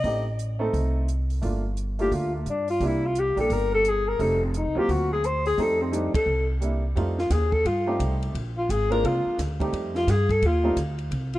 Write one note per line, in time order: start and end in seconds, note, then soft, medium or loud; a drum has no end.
0.00 0.69 A1 medium
0.00 0.23 A3 soft
0.00 0.23 C4 soft
0.00 0.25 D#5 medium
0.04 0.24 D#4 soft
0.04 0.24 G4 medium
0.04 kick soft
0.04 open hi-hat soft
0.39 closed hi-hat medium
0.59 1.05 A3 medium
0.59 1.05 C4 medium
0.59 1.05 D#4 medium
0.59 1.06 A4 medium
0.73 1.39 C2 medium
0.73 kick soft
0.73 open hi-hat soft
1.08 closed hi-hat medium
1.30 open hi-hat soft
1.42 2.08 G1 medium
1.42 1.62 A3 medium
1.42 1.62 A#3 medium
1.42 1.62 D4 medium
1.42 1.63 F4 medium
1.42 kick soft
1.42 open hi-hat soft
1.77 closed hi-hat medium
1.99 2.44 A3 medium
1.99 2.44 A#3 medium
1.99 2.44 D4 medium
1.99 2.44 F4 medium
1.99 2.15 G4 medium
1.99 open hi-hat soft
2.12 2.44 D2 medium
2.12 2.35 F4 medium
2.12 kick soft
2.12 open hi-hat soft
2.35 2.51 A3 soft
2.46 2.78 G2 medium
2.46 2.70 D4 medium
2.46 closed hi-hat soft
2.68 2.88 F4 medium
2.68 open hi-hat soft
2.80 3.33 C2 medium
2.80 3.00 G3 medium
2.80 3.01 A#3 medium
2.80 3.01 D4 medium
2.80 3.01 E4 medium
2.80 kick soft
2.80 open hi-hat soft
2.86 3.07 E4 medium
3.06 3.21 F4 medium
3.15 3.39 G4 medium
3.15 closed hi-hat medium
3.36 3.49 A#1 medium
3.36 3.81 G3 medium
3.36 3.82 A#3 medium
3.36 3.82 D4 medium
3.36 3.83 G4 medium
3.36 3.54 A4 medium
3.36 open hi-hat soft
3.50 4.16 G1 medium
3.50 3.73 A#4 medium
3.50 kick soft
3.50 open hi-hat soft
3.74 3.90 A4 loud
3.85 4.09 G#4 medium
3.85 closed hi-hat medium
4.08 4.23 A#4 medium
4.19 4.62 F1 medium
4.19 4.39 G3 medium
4.19 4.39 A3 medium
4.19 4.39 C4 medium
4.19 4.40 D#4 medium
4.19 4.42 A4 medium
4.19 kick soft
4.19 open hi-hat soft
4.44 4.58 C4 soft
4.54 4.80 D#4 medium
4.54 closed hi-hat medium
4.65 4.75 C2 medium
4.75 4.87 D#2 medium
4.75 5.20 F#3 medium
4.75 5.21 A#3 medium
4.75 5.21 C4 medium
4.75 5.21 F4 medium
4.75 4.92 G4 medium
4.89 5.54 D2 medium
4.89 5.11 F#4 medium
4.89 kick soft
4.89 open hi-hat soft
5.13 5.27 G#4 medium
5.24 5.46 C5 medium
5.24 closed hi-hat soft
5.46 5.63 G#4 medium
5.46 open hi-hat soft
5.57 6.10 F2 medium
5.57 5.90 G3 medium
5.57 5.90 A3 medium
5.57 5.91 C4 medium
5.57 5.92 D#4 medium
5.57 kick soft
5.57 open hi-hat soft
5.61 5.83 A4 medium
5.81 5.95 C4 medium
5.92 6.12 G3 medium
5.92 6.12 A3 medium
5.92 6.12 C4 medium
5.92 6.12 D4 medium
5.92 6.14 D#4 medium
5.92 closed hi-hat medium
6.14 6.47 A4 medium
6.14 muted upright bass stroke soft
6.14 kick medium
6.14 ride medium
6.26 6.92 C2 medium
6.61 6.81 G3 medium
6.61 6.81 A#3 medium
6.61 6.82 D4 medium
6.61 6.82 E4 medium
6.61 closed hi-hat medium
6.95 7.30 F2 medium
6.95 7.15 G3 medium
6.95 7.16 A3 medium
6.95 7.16 C4 medium
6.95 7.16 D#4 medium
6.95 7.16 F4 medium
6.95 kick soft
6.95 ride medium
7.18 7.33 F4 medium
7.18 snare soft
7.30 7.64 D#2 medium
7.30 7.53 G#4 medium
7.30 kick soft
7.30 snare soft
7.30 hi-hat pedal medium
7.30 ride medium
7.52 7.68 A4 medium
7.52 kick soft
7.65 7.99 G2 medium
7.65 8.00 F4 medium
7.65 kick soft
7.65 ride medium
7.86 8.32 G3 medium
7.86 8.32 A3 medium
7.86 8.32 C4 medium
7.86 8.32 D#4 medium
7.86 8.32 G4 medium
7.99 8.33 C2 medium
7.99 kick soft
7.99 hi-hat pedal medium
7.99 ride medium
8.23 ride soft
8.35 8.68 A#1 medium
8.35 kick soft
8.35 ride medium
8.57 8.72 F4 medium
8.69 9.03 G#1 medium
8.69 8.91 G#4 medium
8.69 kick soft
8.69 hi-hat pedal medium
8.69 ride medium
8.90 9.35 G#3 medium
8.90 9.35 A#3 medium
8.90 9.36 C4 medium
8.90 9.36 D4 medium
8.90 9.36 F4 medium
8.90 9.07 A#4 medium
8.90 ride soft
9.04 9.24 C2 medium
9.04 9.39 F4 medium
9.04 kick soft
9.04 ride medium
9.26 muted upright bass stroke soft
9.38 9.72 D2 medium
9.38 kick soft
9.38 snare soft
9.38 hi-hat pedal medium
9.38 ride medium
9.60 10.05 G3 medium
9.60 10.05 A3 medium
9.60 10.05 C4 medium
9.60 10.05 D#4 medium
9.60 10.06 G4 medium
9.60 kick medium
9.60 ride soft
9.73 10.06 F2 medium
9.73 kick soft
9.73 ride medium
9.95 10.12 F4 medium
9.95 snare soft
10.07 10.41 G2 medium
10.07 10.32 G#4 medium
10.07 kick soft
10.07 snare soft
10.07 hi-hat pedal medium
10.07 ride medium
10.29 10.47 A4 medium
10.29 kick medium
10.29 ride soft
10.42 10.76 D#2 medium
10.42 10.78 F4 medium
10.42 kick soft
10.42 ride medium
10.63 10.75 G3 medium
10.63 10.75 A3 medium
10.63 10.76 C4 medium
10.63 10.76 D#4 medium
10.63 10.76 F4 medium
10.76 11.10 D2 medium
10.76 kick soft
10.76 hi-hat pedal medium
10.76 ride medium
10.98 ride soft
11.11 11.39 C2 medium
11.11 kick soft
11.11 ride medium
11.33 11.39 F4 medium
11.33 ride soft